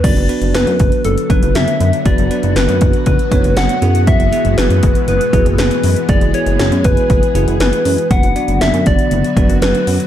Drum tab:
CC |x---------------|----------------|----------------|----------------|
HH |xxxxxxxxxxxxxxxx|xxxxxxxxxxxxxxxx|xxxxxxxxxxxxxxox|xxxxxxxxxxxxxxox|
SD |----o-------o---|----o-------o---|----o-------o---|----o-------o---|
BD |o-----o---o-----|o-----o-o-o-----|o-----o---o-----|o-----o-o-------|

CC |----------------|
HH |xxxxxxxxxxxxxxox|
SD |----o-------o---|
BD |o-----o---o-----|